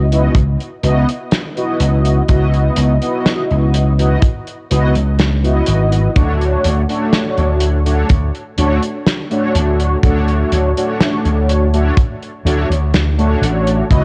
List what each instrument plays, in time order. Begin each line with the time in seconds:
Already playing: slap bass C#2
0.11 analog polysynth B3 E4 F#4 D#5, closed hi-hat
0.35 slap bass C#2, kick, closed hi-hat
0.61 closed hi-hat
0.83 slap bass C#2, analog polysynth B3 E4 F#4 D#5, closed hi-hat
1.09 closed hi-hat
1.31 snare, closed hi-hat
1.56 analog polysynth B3 E4 F#4 D#5, closed hi-hat
1.80 slap bass C#2, closed hi-hat
2.05 closed hi-hat
2.28 slap bass C#2, analog polysynth B3 E4 F#4 D#5, kick, closed hi-hat
2.54 closed hi-hat
2.76 slap bass C#2, closed hi-hat
3.01 analog polysynth B3 E4 F#4 D#5, closed hi-hat
3.26 snare, closed hi-hat
3.50 slap bass C#2, closed hi-hat
3.74 closed hi-hat
3.98 analog polysynth B3 E4 F#4 D#5, closed hi-hat
4.22 kick, closed hi-hat
4.47 closed hi-hat
4.70 slap bass C#2, analog polysynth B3 E4 F#4 D#5, closed hi-hat
4.95 slap bass C#2, closed hi-hat
5.19 snare, closed hi-hat
5.43 analog polysynth B3 E4 F#4 D#5, closed hi-hat
5.66 slap bass G#1, closed hi-hat
5.92 closed hi-hat
6.15 slap bass D2, analog polysynth A3 D4 F#4 C#5, kick, closed hi-hat
6.41 closed hi-hat
6.64 slap bass D2, closed hi-hat
6.88 analog polysynth A3 D4 F#4 C#5, closed hi-hat
7.13 snare, closed hi-hat
7.38 slap bass D2, closed hi-hat
7.61 closed hi-hat
7.85 analog polysynth A3 D4 F#4 C#5, closed hi-hat
8.09 slap bass D2, kick, closed hi-hat
8.35 closed hi-hat
8.57 slap bass D2, analog polysynth A3 D4 F#4 C#5, closed hi-hat
8.83 closed hi-hat
9.07 snare, closed hi-hat
9.30 analog polysynth A3 D4 F#4 C#5, closed hi-hat
9.55 slap bass D2, closed hi-hat
9.80 closed hi-hat
10.03 slap bass D2, analog polysynth A3 D4 F#4 C#5, kick, closed hi-hat
10.28 closed hi-hat
10.52 slap bass D2, closed hi-hat
10.76 analog polysynth A3 D4 F#4 C#5, closed hi-hat
11.00 snare, closed hi-hat
11.25 slap bass D2, closed hi-hat
11.49 closed hi-hat
11.72 analog polysynth A3 D4 F#4 C#5, closed hi-hat
11.97 kick, closed hi-hat
12.22 closed hi-hat
12.45 slap bass D2, analog polysynth A3 D4 F#4 C#5, closed hi-hat
12.70 slap bass D2, closed hi-hat
12.94 snare, closed hi-hat
13.18 analog polysynth A3 D4 F#4 C#5, closed hi-hat
13.41 slap bass A1, closed hi-hat
13.67 closed hi-hat
13.89 slap bass C#2, analog polysynth B3 E4 F#4 D#5, kick, closed hi-hat